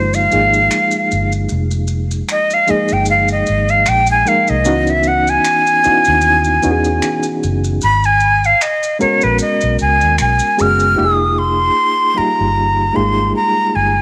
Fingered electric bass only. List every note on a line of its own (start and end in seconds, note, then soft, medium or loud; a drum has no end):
0.00 0.26 G1 medium
0.33 0.67 G#1 medium
1.13 1.46 G1 medium
1.52 2.21 F1 medium
2.70 muted fingered electric bass stroke soft
2.92 3.42 G1 medium
3.49 3.83 G#1 medium
3.88 4.23 A#1 medium
4.50 4.68 C2 medium
4.68 5.37 C#2 loud
5.86 muted fingered electric bass stroke soft
6.08 6.58 D#2 medium
6.65 6.99 E2 medium
7.44 7.78 F#1 medium
7.84 8.53 G#1 loud
9.02 muted fingered electric bass stroke soft
9.24 9.38 A#1 medium
9.63 9.78 B1 medium
9.81 10.00 C#2 medium
10.03 10.17 D#2 medium
10.21 10.39 B1 medium
10.60 10.94 F#1 loud
11.00 11.69 F1 medium
12.19 muted fingered electric bass stroke soft
12.40 12.90 G1 medium
12.97 13.31 G#1 medium
13.76 14.02 G1 medium